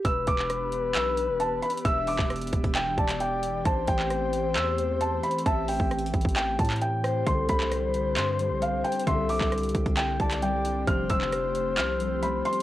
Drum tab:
HH |x-----------x-----------x-----------x-----------x-----------x-----------x-----------x---x---x---|x-----------o-----------x--x--x--x--x-----x-----x-----------x-----x-----x-----------x-----------|x-----------x-----------x-----------x-----------x-----------x-----------x-----------x---x---x---|x-----------o-----------x---x---x---x---x---x---x-----------x--x--x--x--x-----------x-----------|
CP |------------------x-----------------------------x-----------------------------------------------|------------------x-----------------------------x-----------------x-----------------------------|------------------x-----------------------------x-----------------------------------------------|------------------------------------------------x-----------------x-----------------------------|
SD |------------------------r-----------------------------------------------------------------------|------------------------r-----------------------------------------------------------------------|------------------------r-----------------------------------------------------------------------|------------------------r-----------------------------------------------------------r-----------|
BD |o-----------o-----------------------------------------------------------------------------------|o-----------------o-----------------o-----o-----------------o-----------------------------------|o-----------o-----------------------------------------------------------------------------------|o-----------------o-----------------o-----o-----------------o-----------------------------------|

HH |x-----------x-----------x-----------x-----------x-----------x-----------x-----------x---x---x---|x-----------o-----------x--x--x--x--x-----x-----x-----------x-----x-----x-----------x-----------|x-----------x-----------x-----------x-----------x-----------x-----------x-----------x---x-------|
CP |------------------x-----------------------------x-----------------------------------------------|------------------x-----------------------------x-----------------x-----------------------------|------------------x-----------------------------x-----------------------------------------------|
SD |------------------------r-----------------------------------------------------------------------|------------------------r-----------------------------------------------------------------------|------------------------r-----------------------------------------------------------------------|
BD |o-----------o-----------------------------------------------------------------------------------|o-----------------o-----------------o-----o-----------------o-----------------------------------|o-----------o-----------------------------------------------------------------------------------|